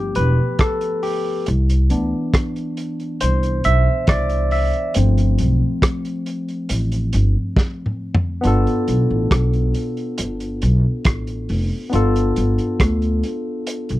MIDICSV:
0, 0, Header, 1, 4, 480
1, 0, Start_track
1, 0, Tempo, 872093
1, 806, Time_signature, 4, 2, 24, 8
1, 7703, End_track
2, 0, Start_track
2, 0, Title_t, "Tine electric piano"
2, 0, Program_c, 0, 4
2, 0, Control_c, 0, 64, 127
2, 0, Note_on_c, 0, 67, 82
2, 87, Note_on_c, 0, 71, 94
2, 95, Note_off_c, 0, 67, 0
2, 195, Note_off_c, 0, 71, 0
2, 327, Note_on_c, 0, 69, 84
2, 566, Note_on_c, 0, 67, 73
2, 573, Note_off_c, 0, 69, 0
2, 789, Note_off_c, 0, 67, 0
2, 813, Control_c, 0, 64, 0
2, 918, Control_c, 0, 64, 127
2, 1045, Note_on_c, 0, 52, 54
2, 1048, Note_on_c, 0, 59, 52
2, 1051, Note_on_c, 0, 62, 62
2, 1743, Note_off_c, 0, 52, 0
2, 1745, Note_off_c, 0, 59, 0
2, 1746, Note_off_c, 0, 62, 0
2, 1766, Note_on_c, 0, 72, 86
2, 1989, Note_off_c, 0, 72, 0
2, 2009, Note_on_c, 0, 76, 105
2, 2116, Note_off_c, 0, 76, 0
2, 2251, Note_on_c, 0, 74, 90
2, 2471, Note_off_c, 0, 74, 0
2, 2487, Note_on_c, 0, 76, 83
2, 2709, Note_off_c, 0, 76, 0
2, 2726, Note_on_c, 0, 53, 59
2, 2728, Note_on_c, 0, 57, 55
2, 2732, Control_c, 0, 64, 0
2, 2732, Note_on_c, 0, 60, 63
2, 2823, Control_c, 0, 64, 127
2, 4623, Note_off_c, 0, 53, 0
2, 4624, Note_off_c, 0, 57, 0
2, 4626, Note_off_c, 0, 60, 0
2, 4629, Note_on_c, 0, 59, 78
2, 4641, Note_on_c, 0, 62, 68
2, 4651, Note_on_c, 0, 65, 61
2, 4652, Control_c, 0, 64, 0
2, 4663, Note_on_c, 0, 69, 86
2, 4762, Control_c, 0, 64, 127
2, 6535, Note_off_c, 0, 59, 0
2, 6541, Note_off_c, 0, 62, 0
2, 6546, Note_off_c, 0, 65, 0
2, 6547, Note_on_c, 0, 59, 70
2, 6552, Note_off_c, 0, 69, 0
2, 6559, Note_on_c, 0, 62, 67
2, 6568, Note_on_c, 0, 65, 69
2, 6580, Note_on_c, 0, 69, 90
2, 7703, Note_off_c, 0, 59, 0
2, 7703, Note_off_c, 0, 62, 0
2, 7703, Note_off_c, 0, 65, 0
2, 7703, Note_off_c, 0, 69, 0
2, 7703, End_track
3, 0, Start_track
3, 0, Title_t, "Upright bass"
3, 0, Program_c, 1, 32
3, 0, Note_on_c, 1, 31, 91
3, 73, Note_off_c, 1, 31, 0
3, 95, Note_on_c, 1, 28, 89
3, 204, Note_off_c, 1, 28, 0
3, 815, Note_on_c, 1, 36, 113
3, 1034, Note_off_c, 1, 36, 0
3, 1052, Note_on_c, 1, 38, 86
3, 1163, Note_off_c, 1, 38, 0
3, 1772, Note_on_c, 1, 36, 94
3, 1992, Note_off_c, 1, 36, 0
3, 2014, Note_on_c, 1, 35, 101
3, 2124, Note_off_c, 1, 35, 0
3, 2248, Note_on_c, 1, 36, 83
3, 2587, Note_off_c, 1, 36, 0
3, 2732, Note_on_c, 1, 31, 107
3, 2952, Note_off_c, 1, 31, 0
3, 2973, Note_on_c, 1, 35, 89
3, 3083, Note_off_c, 1, 35, 0
3, 3690, Note_on_c, 1, 33, 91
3, 3910, Note_off_c, 1, 33, 0
3, 3931, Note_on_c, 1, 31, 101
3, 4042, Note_off_c, 1, 31, 0
3, 4650, Note_on_c, 1, 31, 104
3, 4761, Note_off_c, 1, 31, 0
3, 4888, Note_on_c, 1, 35, 88
3, 5000, Note_off_c, 1, 35, 0
3, 5011, Note_on_c, 1, 33, 87
3, 5119, Note_off_c, 1, 33, 0
3, 5126, Note_on_c, 1, 35, 89
3, 5349, Note_off_c, 1, 35, 0
3, 5609, Note_on_c, 1, 31, 82
3, 5830, Note_off_c, 1, 31, 0
3, 5849, Note_on_c, 1, 35, 99
3, 5961, Note_off_c, 1, 35, 0
3, 6087, Note_on_c, 1, 33, 76
3, 6309, Note_off_c, 1, 33, 0
3, 6328, Note_on_c, 1, 29, 90
3, 6440, Note_off_c, 1, 29, 0
3, 6569, Note_on_c, 1, 31, 108
3, 6790, Note_off_c, 1, 31, 0
3, 6810, Note_on_c, 1, 31, 92
3, 6921, Note_off_c, 1, 31, 0
3, 7047, Note_on_c, 1, 38, 97
3, 7269, Note_off_c, 1, 38, 0
3, 7653, Note_on_c, 1, 35, 86
3, 7703, Note_off_c, 1, 35, 0
3, 7703, End_track
4, 0, Start_track
4, 0, Title_t, "Drums"
4, 83, Note_on_c, 9, 42, 64
4, 138, Note_off_c, 9, 42, 0
4, 323, Note_on_c, 9, 42, 69
4, 326, Note_on_c, 9, 36, 108
4, 334, Note_on_c, 9, 37, 99
4, 378, Note_off_c, 9, 42, 0
4, 381, Note_off_c, 9, 36, 0
4, 389, Note_off_c, 9, 37, 0
4, 446, Note_on_c, 9, 42, 54
4, 501, Note_off_c, 9, 42, 0
4, 565, Note_on_c, 9, 46, 77
4, 620, Note_off_c, 9, 46, 0
4, 805, Note_on_c, 9, 42, 90
4, 860, Note_off_c, 9, 42, 0
4, 932, Note_on_c, 9, 42, 50
4, 988, Note_off_c, 9, 42, 0
4, 1045, Note_on_c, 9, 42, 53
4, 1100, Note_off_c, 9, 42, 0
4, 1286, Note_on_c, 9, 36, 107
4, 1288, Note_on_c, 9, 42, 78
4, 1291, Note_on_c, 9, 37, 94
4, 1341, Note_off_c, 9, 36, 0
4, 1343, Note_off_c, 9, 42, 0
4, 1346, Note_off_c, 9, 37, 0
4, 1409, Note_on_c, 9, 42, 40
4, 1464, Note_off_c, 9, 42, 0
4, 1525, Note_on_c, 9, 42, 77
4, 1580, Note_off_c, 9, 42, 0
4, 1650, Note_on_c, 9, 42, 31
4, 1705, Note_off_c, 9, 42, 0
4, 1764, Note_on_c, 9, 42, 89
4, 1819, Note_off_c, 9, 42, 0
4, 1888, Note_on_c, 9, 42, 50
4, 1943, Note_off_c, 9, 42, 0
4, 2003, Note_on_c, 9, 42, 66
4, 2058, Note_off_c, 9, 42, 0
4, 2240, Note_on_c, 9, 42, 76
4, 2244, Note_on_c, 9, 36, 113
4, 2251, Note_on_c, 9, 37, 104
4, 2295, Note_off_c, 9, 42, 0
4, 2299, Note_off_c, 9, 36, 0
4, 2306, Note_off_c, 9, 37, 0
4, 2364, Note_on_c, 9, 42, 52
4, 2419, Note_off_c, 9, 42, 0
4, 2482, Note_on_c, 9, 46, 75
4, 2537, Note_off_c, 9, 46, 0
4, 2605, Note_on_c, 9, 42, 34
4, 2660, Note_off_c, 9, 42, 0
4, 2720, Note_on_c, 9, 42, 90
4, 2775, Note_off_c, 9, 42, 0
4, 2849, Note_on_c, 9, 42, 51
4, 2904, Note_off_c, 9, 42, 0
4, 2963, Note_on_c, 9, 42, 58
4, 3018, Note_off_c, 9, 42, 0
4, 3204, Note_on_c, 9, 36, 96
4, 3206, Note_on_c, 9, 42, 84
4, 3210, Note_on_c, 9, 37, 98
4, 3259, Note_off_c, 9, 36, 0
4, 3261, Note_off_c, 9, 42, 0
4, 3265, Note_off_c, 9, 37, 0
4, 3329, Note_on_c, 9, 42, 48
4, 3384, Note_off_c, 9, 42, 0
4, 3446, Note_on_c, 9, 42, 70
4, 3501, Note_off_c, 9, 42, 0
4, 3569, Note_on_c, 9, 42, 37
4, 3624, Note_off_c, 9, 42, 0
4, 3682, Note_on_c, 9, 42, 94
4, 3737, Note_off_c, 9, 42, 0
4, 3807, Note_on_c, 9, 42, 50
4, 3862, Note_off_c, 9, 42, 0
4, 3923, Note_on_c, 9, 42, 79
4, 3978, Note_off_c, 9, 42, 0
4, 4164, Note_on_c, 9, 36, 97
4, 4169, Note_on_c, 9, 38, 48
4, 4219, Note_off_c, 9, 36, 0
4, 4224, Note_off_c, 9, 38, 0
4, 4325, Note_on_c, 9, 45, 65
4, 4380, Note_off_c, 9, 45, 0
4, 4483, Note_on_c, 9, 43, 104
4, 4538, Note_off_c, 9, 43, 0
4, 4643, Note_on_c, 9, 42, 80
4, 4698, Note_off_c, 9, 42, 0
4, 4772, Note_on_c, 9, 42, 44
4, 4827, Note_off_c, 9, 42, 0
4, 4885, Note_on_c, 9, 42, 59
4, 4940, Note_off_c, 9, 42, 0
4, 5124, Note_on_c, 9, 36, 106
4, 5126, Note_on_c, 9, 42, 81
4, 5130, Note_on_c, 9, 37, 99
4, 5179, Note_off_c, 9, 36, 0
4, 5181, Note_off_c, 9, 42, 0
4, 5185, Note_off_c, 9, 37, 0
4, 5248, Note_on_c, 9, 42, 40
4, 5303, Note_off_c, 9, 42, 0
4, 5363, Note_on_c, 9, 42, 69
4, 5418, Note_off_c, 9, 42, 0
4, 5487, Note_on_c, 9, 42, 35
4, 5542, Note_off_c, 9, 42, 0
4, 5602, Note_on_c, 9, 42, 92
4, 5657, Note_off_c, 9, 42, 0
4, 5726, Note_on_c, 9, 42, 53
4, 5781, Note_off_c, 9, 42, 0
4, 5843, Note_on_c, 9, 42, 71
4, 5898, Note_off_c, 9, 42, 0
4, 6080, Note_on_c, 9, 42, 80
4, 6084, Note_on_c, 9, 36, 103
4, 6090, Note_on_c, 9, 37, 96
4, 6135, Note_off_c, 9, 42, 0
4, 6139, Note_off_c, 9, 36, 0
4, 6145, Note_off_c, 9, 37, 0
4, 6204, Note_on_c, 9, 42, 47
4, 6259, Note_off_c, 9, 42, 0
4, 6323, Note_on_c, 9, 46, 72
4, 6378, Note_off_c, 9, 46, 0
4, 6565, Note_on_c, 9, 42, 82
4, 6620, Note_off_c, 9, 42, 0
4, 6691, Note_on_c, 9, 42, 52
4, 6746, Note_off_c, 9, 42, 0
4, 6804, Note_on_c, 9, 42, 58
4, 6859, Note_off_c, 9, 42, 0
4, 6925, Note_on_c, 9, 42, 38
4, 6981, Note_off_c, 9, 42, 0
4, 7044, Note_on_c, 9, 36, 101
4, 7046, Note_on_c, 9, 42, 84
4, 7050, Note_on_c, 9, 37, 89
4, 7099, Note_off_c, 9, 36, 0
4, 7101, Note_off_c, 9, 42, 0
4, 7105, Note_off_c, 9, 37, 0
4, 7166, Note_on_c, 9, 42, 37
4, 7221, Note_off_c, 9, 42, 0
4, 7284, Note_on_c, 9, 42, 73
4, 7339, Note_off_c, 9, 42, 0
4, 7522, Note_on_c, 9, 42, 89
4, 7577, Note_off_c, 9, 42, 0
4, 7645, Note_on_c, 9, 42, 52
4, 7701, Note_off_c, 9, 42, 0
4, 7703, End_track
0, 0, End_of_file